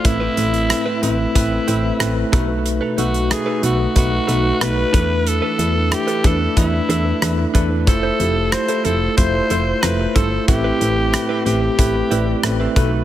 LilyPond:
<<
  \new Staff \with { instrumentName = "Clean electric guitar" } { \time 4/4 \key a \minor \tempo 4 = 92 r16 <c' e' b'>16 <c' e' b'>16 r8 <c' e' b'>16 <c' e' b'>16 r8. <c' e' b'>16 r8. <dis' a' b'>16 r16 | r16 <dis' a' b'>16 <dis' a' b'>16 r8 <dis' a' b'>16 <dis' a' b'>16 r8. <dis' a' b'>16 r8. <d' a' b'>16 r16 | r16 <d' a' b'>16 <d' a' b'>16 r8 <d' a' b'>16 <d' a' b'>16 r8. <d' a' b'>16 r8. <d' a' b'>16 r16 | r16 <e' a' c''>16 <e' a' c''>16 r8 <e' a' c''>16 <e' a' c''>16 r8. <e' a' c''>16 r8. <e' a' c''>16 r16 |
r16 <c' e' b'>16 <c' e' b'>16 r8 <c' e' b'>16 <c' e' b'>16 r8. <c' e' b'>16 r8 <c' e' b'>16 <dis' a' b'>16 r16 | }
  \new Staff \with { instrumentName = "Alto saxophone" } { \time 4/4 \key a \minor e'4. e'2 r8 | r8 fis'8 aes'8 fis'8 fis'4 b'4 | a'4 g'8 a'8 e'4. r8 | a'4 c''8 a'8 c''4 b'8 a'8 |
g'4. g'2 r8 | }
  \new Staff \with { instrumentName = "Tine electric piano" } { \time 4/4 \key a \minor <a c' e' b'>8 <a c' e' a'>8 <a c' e' b'>8 <a c' e' b'>8 <a c' e' b'>8 <a c' e' c''>8 <a c' e' b'>8 <a dis' fis' b'>8~ | <a dis' fis' b'>8 <a dis' fis' b'>8 <a dis' fis' b'>8 <a dis' fis' b'>8 <a dis' fis' b'>8 <a dis' fis' b'>8 <a dis' fis' b'>8 <a d' e' b'>8~ | <a d' e' b'>8 <a d' e' b'>8 <a d' e' a'>8 <a d' e' b'>8 <a d' e' b'>8 <a d' e' b'>8 <a d' e' b'>8 <a d' e' b'>8 | <a e' f' c''>8 <a e' f' g'>8 <a e' f' c''>8 <a e' f' c''>8 <a e' f' c''>8 <a e' f' c''>8 <a e' f' c''>8 <a e' f' c''>8 |
<a c' e' b'>8 <a c' e' b'>8 <a c' e' b'>8 <a c' e' g'>8 <a c' e' b'>8 <a c' e' d''>8 <a c' e' b'>8 <a dis' fis' b'>8 | }
  \new Staff \with { instrumentName = "Tine electric piano" } { \clef bass \time 4/4 \key a \minor a,4. r2 b,8~ | b,4 r2 r8 e8~ | e4 r2. | r1 |
a,4. r2 b,8 | }
  \new Staff \with { instrumentName = "FM bass" } { \clef bass \time 4/4 \key a \minor a,,8 a,,8. r16 a,,8 a,,8 a,,8 a,,8 b,,8~ | b,,8 b,,8. r16 b,,8 b,,8 b,,8 b,,8 e,8~ | e,8 e,8. r16 e,8 e,8 e,8 e,8 e,8 | f,,8 f,,8. r16 f,,8 f,,8 f,,8 f,,8 g,,8 |
a,,8 a,,8. r16 a,,8 a,,8 a,,8 a,,8 b,,8 | }
  \new DrumStaff \with { instrumentName = "Drums" } \drummode { \time 4/4 <hh bd>8 hh16 hh16 <hh ss>8 hh8 <hh bd>8 hh8 <hh ss>8 <hh bd>8 | hh8 hh16 hh16 <hh ss>8 hh8 <hh bd>8 hh8 <hh ss>8 <hh bd>8 | hh8 hh8 <hh ss>16 hh16 <hh bd>8 <hh bd>8 hh8 <hh ss>8 <hh bd>8 | <hh bd>8 hh8 <hh ss>16 hh16 hh8 <hh bd>8 hh8 <hh ss>8 <hh bd>8 |
<hh bd>8 hh8 <hh ss>8 hh8 <hh bd>8 hh8 <hh ss>8 <hh bd>8 | }
>>